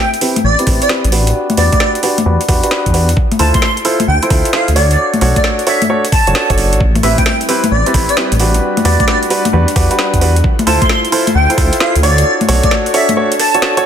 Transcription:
0.14 closed hi-hat
0.21 C4 E4 G4 B4, open hi-hat
0.36 closed hi-hat, high conga
0.44 A1 D5
0.59 C4 E4 G4 B4, closed hi-hat
0.67 A1 C4 E4 G4 B4, kick, cross-stick, open hi-hat
0.82 D5, closed hi-hat
0.89 C4 E4 G4 B4, snare
1.04 A1, closed hi-hat
1.12 D4 F#4 G4 B4, open hi-hat
1.27 closed hi-hat
1.50 closed hi-hat, high conga
1.57 E2 D4 F#4 G4 B4 D5, open hi-hat
1.72 D5, kick, closed hi-hat, high conga
1.80 D5, snare
1.95 closed hi-hat
2.03 D4 F#4 G4 B4, open hi-hat
2.18 closed hi-hat, high conga
2.26 E2 D4 F#4 G4 B4
2.41 closed hi-hat
2.48 E2 D4 F#4 G4 B4, kick, cross-stick, open hi-hat
2.63 D4 F#4 G4 B4, closed hi-hat
2.71 snare
2.86 E2, kick, closed hi-hat
2.94 D4 F#4 G4 B4, open hi-hat
3.09 closed hi-hat
3.17 kick
3.32 closed hi-hat, high conga
3.39 D2 E4 F4 A4 C5 A5, open hi-hat
3.54 C6, kick, closed hi-hat, high conga
3.62 C6, snare
3.77 closed hi-hat
3.85 E4 F4 A4 C5, open hi-hat
4.00 closed hi-hat, high conga
4.08 D2 G5
4.23 E4 F4 A4 C5, closed hi-hat
4.30 D2 E4 F4 A4 C5, kick, cross-stick, open hi-hat
4.45 closed hi-hat
4.53 E4 F4 A4 C5 F5, snare
4.68 D2, closed hi-hat
4.76 D4 F#4 A4 C#5 D5, open hi-hat
4.91 closed hi-hat
5.14 closed hi-hat, high conga
5.21 B1 D4 F#4 A4 C#5, open hi-hat
5.36 D5, kick, closed hi-hat, high conga
5.44 snare
5.59 closed hi-hat
5.67 D4 F#4 A4 C#5 E5, open hi-hat
5.82 closed hi-hat, high conga
5.90 D4 F#4 A4 C#5
6.05 closed hi-hat
6.12 A5, kick, cross-stick, open hi-hat
6.27 F#1 D4 F#4 A4 C#5, closed hi-hat
6.35 snare
6.50 F#1 D4 F#4 A4 C#5, kick, closed hi-hat
6.58 open hi-hat
6.73 A1, closed hi-hat
6.80 G3 C4 E4 B4, kick
6.95 closed hi-hat, high conga
7.03 A1 C4 E4 G4 B4 E5, open hi-hat
7.18 G5, kick, closed hi-hat, high conga
7.26 G5, snare
7.41 closed hi-hat
7.49 C4 E4 G4 B4, open hi-hat
7.64 closed hi-hat, high conga
7.71 A1 D5
7.86 C4 E4 G4 B4, closed hi-hat
7.94 A1 C4 E4 G4 B4, kick, cross-stick, open hi-hat
8.09 D5, closed hi-hat
8.17 C4 E4 G4 B4, snare
8.32 A1, closed hi-hat
8.40 D4 F#4 G4 B4, open hi-hat
8.54 closed hi-hat
8.62 D4 F#5
8.77 closed hi-hat, high conga
8.85 E2 D4 F#4 G4 B4 D5, open hi-hat
9.00 D5, kick, closed hi-hat, high conga
9.08 D5, snare
9.23 closed hi-hat
9.30 D4 F#4 G4 B4, open hi-hat
9.45 closed hi-hat, high conga
9.53 E2 D4 F#4 G4 B4
9.68 closed hi-hat
9.76 E2 D4 F#4 G4 B4, kick, cross-stick, open hi-hat
9.91 D4 F#4 G4 B4, closed hi-hat
9.99 snare
10.14 E2, kick, closed hi-hat
10.21 D4 F#4 G4 B4, open hi-hat
10.36 closed hi-hat
10.44 E4 F4 A4 C5, kick
10.59 closed hi-hat, high conga
10.67 D2 E4 F4 A4 C5 A5, open hi-hat
10.82 C6, kick, closed hi-hat, high conga
10.89 C6, snare
11.05 closed hi-hat
11.12 E4 F4 A4 C5, open hi-hat
11.27 closed hi-hat, high conga
11.35 D2 G5
11.50 E4 F4 A4 C5, closed hi-hat
11.58 D2 E4 F4 A4 C5, kick, cross-stick, open hi-hat
11.73 closed hi-hat
11.80 E4 F4 A4 C5 F5, snare
11.95 D2, closed hi-hat
12.03 D4 F#4 A4 C#5 D5, open hi-hat
12.18 closed hi-hat
12.26 D4 F#4 A4 C#5
12.41 closed hi-hat, high conga
12.48 B1 D4 F#4 A4 C#5, open hi-hat
12.63 D5, kick, closed hi-hat, high conga
12.71 snare
12.86 closed hi-hat
12.94 D4 F#4 A4 C#5 E5, open hi-hat
13.09 closed hi-hat, high conga
13.17 D4 F#4 A4 C#5
13.32 closed hi-hat
13.39 A5, cross-stick, open hi-hat
13.54 D4 F#4 A4 C#5, closed hi-hat
13.62 snare
13.77 D4 F#4 A4 C#5, cross-stick, closed hi-hat

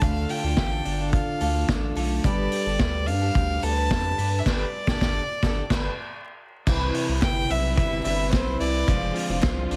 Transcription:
Already playing: D4 F4 A4
0.01 D2 D3 A3 D4 F4 A4 F5, kick, closed hi-hat
0.29 F4 G5, open hi-hat
0.43 D2 D4 F4 A4
0.57 A1 G4, kick, snare, closed hi-hat
0.71 A4
0.85 G1 D4, open hi-hat
0.99 D4 F4 A4
1.13 F4 F5, kick, closed hi-hat
1.40 D2 A3 D4 F4 A4, open hi-hat
1.68 A1 A3 D4 F4 A4, kick, snare, closed hi-hat
1.95 B1 A3 D4 F4 A4, open hi-hat
2.23 G1 G3 B3 D4 G4 A4 D5, kick, closed hi-hat
2.52 G4, open hi-hat
2.66 G1 D4 G4 A4
2.79 D2 B4, kick, snare, closed hi-hat
3.07 G2 D4 F5, open hi-hat
3.21 D4 G4 A4
3.35 D2 G4, kick, closed hi-hat
3.62 D2 B3 D4 G4 A4 A5, open hi-hat
3.77 B4
3.90 F2 B3 D4 G4 A4, kick, snare, closed hi-hat
4.18 G2 B3 D4 G4 A4 B4, open hi-hat
4.39 E5
4.46 G1 G3 B3 D4 G4 A4 D5, kick, snare, crash
4.87 G1 D4 G4 A4, kick, snare
5.01 G1 D4 G4 A4, kick, snare
5.43 G1 D4 G4 A4, kick, snare
5.70 G1 B3 D4 G4 A4, kick, snare, crash
6.67 C2 C3 E3 G3 C4 E4 B4, kick, crash
6.94 E4, open hi-hat
7.08 C2 G3 C4 E4 B4
7.22 G1 B4 G5, kick, snare, clap, hi-hat pedal, ride
7.49 B1 C4 E5, open hi-hat
7.77 G1 B4 E5, kick, hi-hat pedal, ride
8.04 G1 G3 C4 D4 E4 B4 E5, clap, open hi-hat
8.18 E4
8.32 B1 G3 C4 E4 B4 C5, kick, snare, clap, hi-hat pedal, ride
8.60 C2 G3 C4 E4 B4 D5, open hi-hat
8.87 F1 D3 F3 G#3 C4 D4 F4 C5, kick, hi-hat pedal, ride
9.15 F4, open hi-hat
9.29 F1 D4 F4 C5
9.42 C2 C5, kick, snare, clap, hi-hat pedal, ride
9.71 B1 D4, open hi-hat

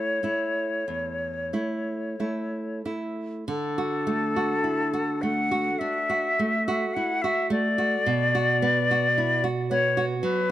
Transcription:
Already playing: A3 E4 C#5
0.23 A3 E4
0.88 E2
1.53 A3 E4
2.20 A3 E4
2.85 A3 E4
3.46 D3 A4
3.78 F#4
4.07 A3
4.36 F#4
4.64 E4
4.93 F#4
5.22 A3 F#5
5.51 F#4
5.79 D4 E5
6.10 F#4
6.39 A3
6.68 F#4
6.94 E4 F#5
7.22 F#4 E5
7.50 A3 D5
7.78 F#4
8.06 B2
8.35 F#4
8.62 B3
8.91 F#4
9.18 E4
9.44 F#4
9.70 B3 C#5
9.97 F#4
10.22 F#3 B4

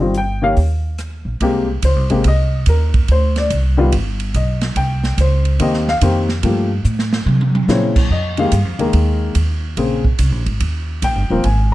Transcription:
Already playing: G1 D#5
0.00 D#3 G3 C4 F4
0.14 G5, closed hi-hat
0.42 D#3 A#3 C#4 G4 F5
0.57 D#2, kick, open hi-hat
0.98 cross-stick, closed hi-hat
1.25 A#1
1.40 C2 C3 G#3 A#3 G4, kick, ride
1.82 C#2 C5, kick, hi-hat pedal, ride
1.96 C2
2.10 G#1 C3 G#3 A#3 G4, ride
2.24 C2 D#5, kick, ride
2.66 D#2 A#4, kick, hi-hat pedal, ride
2.94 kick, ride
3.08 D2 C5, kick, ride
3.36 D5, snare, ride
3.50 C2, kick, hi-hat pedal, ride
3.77 D#3 G3 B3 F4
3.92 G1, kick, ride
4.20 ride
4.34 B1 D#5, kick, hi-hat pedal, ride
4.61 snare, ride
4.76 C2 G5, kick, ride
5.04 snare
5.17 C#2 C5, kick, hi-hat pedal, ride
5.45 ride
5.59 D#2 D#3 A#3 C4 G4 D#5, kick, ride
5.73 snare
5.88 F5, snare
6.01 F2 D#3 A#3 C4 G4, kick, hi-hat pedal, ride
6.29 snare
6.43 G2 F3 A3 A#3 G4, kick, ride
6.84 A2, hi-hat pedal
6.99 snare
7.13 snare
7.26 C3, high tom
7.41 high tom
7.55 high tom
7.68 A#2 C#3 A#3 C4 E4 C#5, snare, hi-hat pedal
7.96 kick, crash
8.10 F2 D#5, kick
8.37 D#3 G#3 A#3 G4 F5, ride
8.52 G2, kick, hi-hat pedal, ride
8.65 F2
8.79 D#2 D#3 G#3 A#3 A#4, ride
8.93 D#2, kick, ride
9.35 D#2, kick, hi-hat pedal, ride
9.77 A#1 C#3 A#3 C4 G#4, kick, ride
10.05 kick
10.19 C2, kick, hi-hat pedal, ride
10.32 A#1
10.46 G#1, ride
10.60 D#2, kick, ride
11.02 A#1 G5, kick, hi-hat pedal, ride
11.15 G1
11.30 D#1 F3 A#3 C4 A#4
11.44 G#1 G#5, kick, ride

